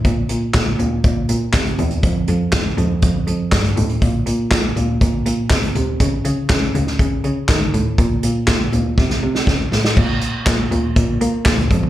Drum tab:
CC |----------------|----------------|----------------|----------------|
HH |x-x-x-x-x-x-xxxx|x-x-x-x-x-x-xxxx|x-x-x-x-x-x-xxx-|x-x-x-x-x-x-x-x-|
CP |----x-------x---|----x-------x---|----x-------x---|----x-------x---|
SD |----o-------o---|----o-------o---|----o-------o---|----o--o----o---|
FT |------o-------o-|------o-------o-|------o-------o-|------o-------o-|
BD |o---o---o---o---|o---o---o---o---|o---o---o---o---|o---o---o---o---|

CC |----------------|x---------------|
HH |x-x-x-x---------|--x-x-x-x-x-xxx-|
CP |----x-----------|----x-------x---|
SD |----o---oo-oo-oo|----o-------o---|
FT |------o---------|------o------o-o|
BD |o---o---o---o---|o---o---o---o-o-|